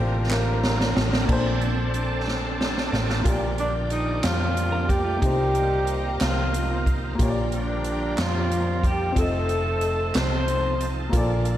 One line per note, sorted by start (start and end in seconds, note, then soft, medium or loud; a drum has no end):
0.00 0.92 A1 loud
0.00 0.26 C3 medium
0.00 1.25 D3 medium
0.00 0.30 F3 medium
0.00 1.23 A#3 medium
0.00 1.25 A#3 medium
0.00 0.28 C4 medium
0.00 1.25 C4 medium
0.00 0.28 D4 medium
0.00 1.24 D4 medium
0.00 0.30 F4 medium
0.00 1.25 A#4 medium
0.00 1.27 C5 medium
0.00 1.25 A5 medium
0.31 1.01 A#3 medium
0.31 1.26 D4 medium
0.31 1.25 F4 medium
0.31 1.01 A#4 medium
0.31 snare medium
0.31 clap medium
0.64 snare medium
0.81 snare medium
0.97 1.27 A1 medium
0.97 snare loud
1.13 snare medium
1.25 3.20 A#3 medium
1.25 2.91 C4 soft
1.25 3.21 D4 medium
1.25 3.21 A4 soft
1.25 kick loud
1.25 crash medium
1.29 2.89 A#1 medium
1.29 2.23 A#2 medium
1.29 2.91 D4 medium
1.29 3.24 A4 medium
1.29 3.22 A4 medium
1.29 3.24 C5 medium
1.29 3.24 D5 medium
1.29 3.24 A5 medium
1.61 closed hi-hat soft
1.94 closed hi-hat soft
2.28 snare medium
2.61 snare medium
2.78 snare medium
2.92 3.23 A1 medium
2.92 3.22 A#3 soft
2.92 3.22 C4 soft
2.92 3.22 D4 soft
2.92 snare medium
3.10 snare medium
3.21 5.16 A#3 medium
3.21 5.17 F4 medium
3.25 4.20 A#1 medium
3.25 4.20 A#2 medium
3.25 5.18 F3 medium
3.25 5.18 A#3 medium
3.25 3.32 F#4 medium
3.25 5.19 G4 medium
3.25 5.20 A#4 medium
3.25 5.20 D5 medium
3.25 5.18 D5 medium
3.25 5.20 D5 medium
3.25 11.57 F5 medium
3.25 5.20 G5 medium
3.25 kick medium
3.25 closed hi-hat medium
3.32 5.22 G4 medium
3.58 4.20 D3 medium
3.58 4.24 F3 medium
3.58 4.54 G3 medium
3.58 3.74 D4 medium
3.58 4.20 D4 medium
3.58 closed hi-hat soft
3.90 4.26 D#4 medium
3.90 closed hi-hat soft
4.23 5.18 F2 medium
4.23 4.86 F3 medium
4.23 5.20 D4 medium
4.23 4.86 F4 medium
4.23 4.91 F4 medium
4.23 snare loud
4.23 clap medium
4.23 closed hi-hat medium
4.57 closed hi-hat soft
4.72 4.89 D4 medium
4.72 4.88 A#4 medium
4.88 5.20 G3 medium
4.88 5.05 A#3 medium
4.88 5.20 G4 medium
4.88 5.05 G4 medium
4.88 5.21 G4 medium
4.88 kick medium
4.88 closed hi-hat soft
5.05 5.37 A3 medium
5.05 5.36 F4 medium
5.18 6.17 C3 medium
5.18 6.16 G3 medium
5.18 7.13 A#3 medium
5.18 7.14 D#4 soft
5.18 6.23 G4 medium
5.18 6.16 G4 loud
5.18 7.17 C5 medium
5.18 7.17 D#5 medium
5.18 7.16 A#5 medium
5.22 6.17 C2 medium
5.22 7.15 D#3 soft
5.22 7.15 A#3 soft
5.22 6.18 A#3 medium
5.22 7.15 C4 soft
5.22 6.18 D#4 medium
5.22 7.15 F4 medium
5.22 7.16 F4 soft
5.22 7.17 C5 medium
5.22 kick medium
5.22 closed hi-hat medium
5.55 closed hi-hat soft
5.87 closed hi-hat soft
6.20 7.15 C2 medium
6.20 6.91 F3 medium
6.20 7.17 A#3 medium
6.20 6.95 F4 medium
6.20 6.91 F4 medium
6.20 snare loud
6.20 clap medium
6.20 closed hi-hat medium
6.54 closed hi-hat medium
6.86 kick medium
6.86 closed hi-hat soft
7.15 9.10 A#3 medium
7.15 9.11 F4 medium
7.15 9.14 D5 medium
7.15 9.13 G5 medium
7.15 9.14 A#5 medium
7.19 8.14 A#1 medium
7.19 8.14 A#2 medium
7.19 9.13 F3 medium
7.19 9.13 A#3 medium
7.19 9.12 D4 medium
7.19 9.12 G4 medium
7.19 9.13 G4 medium
7.19 7.28 C#5 medium
7.19 kick medium
7.19 closed hi-hat medium
7.29 9.17 D5 medium
7.52 8.14 D3 medium
7.52 8.20 F3 medium
7.52 8.48 G3 medium
7.52 8.14 D4 medium
7.52 8.22 D4 medium
7.52 closed hi-hat soft
7.84 closed hi-hat soft
8.18 9.12 F2 medium
8.18 8.49 F3 medium
8.18 8.49 F4 medium
8.18 8.85 F4 medium
8.18 snare medium
8.18 clap medium
8.18 closed hi-hat medium
8.52 8.82 F3 medium
8.52 8.82 F4 medium
8.52 closed hi-hat soft
8.84 9.17 G3 medium
8.84 9.17 G4 medium
8.84 9.16 G4 medium
8.84 kick medium
8.84 closed hi-hat soft
9.12 11.07 C4 medium
9.12 11.08 F4 soft
9.12 11.11 D#5 medium
9.12 11.57 A5 medium
9.16 10.11 F1 medium
9.16 11.10 F3 medium
9.16 10.15 A3 medium
9.16 11.10 C4 soft
9.16 10.11 C4 medium
9.16 11.09 D#4 soft
9.16 10.11 D#4 medium
9.16 9.23 G#4 soft
9.16 11.10 A4 soft
9.16 10.15 A4 medium
9.16 10.19 A4 medium
9.16 11.11 C5 medium
9.16 11.11 D#5 medium
9.16 kick medium
9.16 closed hi-hat medium
9.24 11.12 A4 soft
9.49 closed hi-hat soft
9.81 closed hi-hat soft
10.15 11.09 C2 medium
10.15 10.89 C4 medium
10.15 11.10 D#4 medium
10.15 11.10 A4 medium
10.15 10.89 C5 medium
10.15 10.90 C5 medium
10.15 snare loud
10.15 clap medium
10.15 closed hi-hat medium
10.48 closed hi-hat soft
10.81 closed hi-hat soft
11.09 11.57 A#1 medium
11.09 11.57 A#2 medium
11.09 11.57 F3 medium
11.09 11.57 A#3 medium
11.09 11.57 D4 medium
11.09 11.57 F4 medium
11.09 11.57 A4 medium
11.09 11.57 D5 medium
11.09 kick medium
11.09 closed hi-hat medium
11.14 11.57 A4 medium
11.14 11.57 D5 medium
11.45 closed hi-hat soft